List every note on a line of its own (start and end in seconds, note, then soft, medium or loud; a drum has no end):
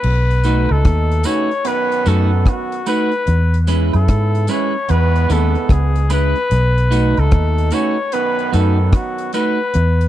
0.00 0.73 B4 loud
0.00 crash medium
0.04 0.67 B1 loud
0.31 closed hi-hat soft
0.44 1.21 B2 medium
0.44 0.68 A3 medium
0.44 1.21 A3 medium
0.44 0.68 D#4 medium
0.44 1.21 D#4 medium
0.44 0.68 F#4 medium
0.44 0.68 B4 medium
0.44 closed hi-hat medium
0.44 tambourine medium
0.69 0.84 C#2 medium
0.69 1.27 A4 loud
0.69 high woodblock medium
0.85 1.23 D#2 loud
0.85 kick loud
0.85 cross-stick loud
0.85 closed hi-hat medium
1.12 closed hi-hat medium
1.23 1.45 C#3 medium
1.23 1.45 A3 medium
1.23 1.48 A3 medium
1.23 1.45 C#4 medium
1.23 1.49 D#4 medium
1.23 1.49 F#4 medium
1.23 1.49 B4 medium
1.23 1.69 C#5 loud
1.23 closed hi-hat medium
1.23 tambourine medium
1.51 closed hi-hat soft
1.64 2.82 F#2 loud
1.64 2.82 D#3 loud
1.64 2.82 B3 loud
1.64 2.10 B4 loud
1.64 closed hi-hat loud
1.92 closed hi-hat medium
2.06 2.44 F#2 medium
2.06 2.29 A3 medium
2.06 2.30 D#4 medium
2.06 2.30 F#4 medium
2.06 2.50 A4 medium
2.06 2.30 B4 medium
2.06 closed hi-hat medium
2.06 tambourine soft
2.46 2.88 F#4 loud
2.46 kick loud
2.46 cross-stick loud
2.46 closed hi-hat medium
2.72 closed hi-hat medium
2.86 3.10 A3 loud
2.86 3.11 D#4 medium
2.86 3.11 F#4 loud
2.86 3.11 B4 medium
2.86 3.60 B4 loud
2.86 closed hi-hat medium
2.86 tambourine medium
2.86 high woodblock medium
3.12 closed hi-hat soft
3.27 3.90 E2 loud
3.27 closed hi-hat medium
3.54 closed hi-hat medium
3.67 4.44 C#3 medium
3.67 3.91 G#3 medium
3.67 4.44 B3 medium
3.67 3.91 C#4 medium
3.67 4.44 E4 medium
3.67 3.91 E4 medium
3.67 3.92 B4 loud
3.67 closed hi-hat medium
3.67 tambourine medium
3.93 4.07 F#2 loud
3.93 4.52 A4 loud
3.93 closed hi-hat soft
3.93 high woodblock medium
4.08 4.47 G#2 loud
4.08 kick loud
4.08 cross-stick loud
4.08 closed hi-hat medium
4.35 closed hi-hat medium
4.47 4.69 G#2 medium
4.47 4.69 E3 medium
4.47 4.72 G#3 medium
4.47 4.69 C#4 medium
4.47 4.73 C#4 medium
4.47 4.73 E4 medium
4.47 4.73 B4 medium
4.47 4.92 C#5 loud
4.47 closed hi-hat medium
4.47 tambourine medium
4.88 5.28 E2 medium
4.88 6.06 G#2 loud
4.88 6.06 E3 loud
4.88 6.06 B3 loud
4.88 5.33 B4 loud
4.88 closed hi-hat medium
5.16 closed hi-hat soft
5.29 5.54 D#2 medium
5.29 5.53 G#3 medium
5.29 5.53 C#4 medium
5.29 5.53 E4 medium
5.29 5.74 A4 loud
5.29 5.53 B4 medium
5.29 closed hi-hat medium
5.29 tambourine medium
5.55 closed hi-hat soft
5.69 6.33 C#2 medium
5.69 6.11 G#4 medium
5.69 kick loud
5.69 cross-stick loud
5.69 closed hi-hat medium
5.96 closed hi-hat medium
6.09 6.34 G#3 medium
6.09 6.34 C#4 medium
6.09 6.34 E4 loud
6.09 6.34 B4 loud
6.09 7.21 B4 loud
6.09 cross-stick medium
6.09 closed hi-hat medium
6.09 tambourine medium
6.09 high woodblock medium
6.36 closed hi-hat soft
6.51 7.14 B1 loud
6.51 closed hi-hat medium
6.78 closed hi-hat soft
6.91 7.68 B2 medium
6.91 7.15 A3 medium
6.91 7.68 A3 medium
6.91 7.68 D#4 loud
6.91 7.15 D#4 medium
6.91 7.15 F#4 medium
6.91 7.15 B4 medium
6.91 closed hi-hat medium
6.91 tambourine medium
7.17 7.31 C#2 loud
7.17 7.75 A4 loud
7.17 closed hi-hat soft
7.17 high woodblock medium
7.31 7.70 D#2 loud
7.31 kick loud
7.31 cross-stick loud
7.31 closed hi-hat medium
7.58 closed hi-hat medium
7.71 7.92 C#3 medium
7.71 7.92 A3 medium
7.71 7.96 A3 medium
7.71 7.93 C#4 loud
7.71 7.96 D#4 medium
7.71 7.96 F#4 loud
7.71 7.96 B4 medium
7.71 8.14 C#5 loud
7.71 closed hi-hat medium
7.71 tambourine medium
8.12 9.30 F#2 loud
8.12 9.30 D#3 loud
8.12 9.30 B3 loud
8.12 8.53 B4 loud
8.12 closed hi-hat loud
8.39 closed hi-hat soft
8.52 8.92 F#2 loud
8.52 8.76 A3 medium
8.52 8.77 D#4 medium
8.52 8.77 F#4 medium
8.52 8.95 A4 medium
8.52 8.77 B4 medium
8.52 closed hi-hat medium
8.52 tambourine medium
8.93 9.34 F#4 medium
8.93 kick loud
8.93 cross-stick loud
8.93 closed hi-hat medium
9.18 closed hi-hat medium
9.33 9.57 A3 medium
9.33 9.58 D#4 medium
9.33 9.58 F#4 medium
9.33 10.06 B4 loud
9.33 9.58 B4 loud
9.33 closed hi-hat medium
9.33 tambourine medium
9.33 high woodblock medium
9.74 10.08 E2 loud
9.74 closed hi-hat medium
10.01 closed hi-hat soft